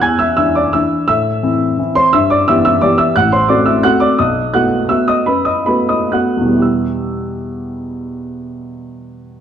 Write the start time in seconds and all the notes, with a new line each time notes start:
0.02 E2 G#5 G#6
0.19 E5 E6
0.37 E3 D4 E4 E5 E6
0.55 D5 D6
0.73 E3 D4 E4 E5 E6
1.08 A2 E5 E6
1.43 E3 C4 E4
1.79 E3 C4 E4
1.95 C5 C6
2.13 G2 E5 E6
2.30 D5 D6
2.48 E3 B3 G4 E5 E6
2.65 E5 E6
2.81 E3 B3 G4 D5 D6
2.98 E5 E6
3.16 A1 F#5 F#6
3.32 C5 C6
3.48 A3 C4 F#4 D5 D6
3.66 E5 E6
3.83 A3 C4 F#4 F#5 F#6
4.00 D5 D6
4.19 B1 D#5 D#6
4.54 A3 B3 F#4 F#5 F#6
4.89 A3 B3 F#4 E5 E6
5.08 D#5 D#6
5.26 F#2 B4 B5
5.45 D#5 D#6
5.66 A3 B3 F#4 B4 B5
5.89 D#5 D#6
6.12 A3 B3 F#4 F#5 F#6
6.37 E2
6.41 B2
6.45 G3
6.50 B3 E4
6.59 G4 E6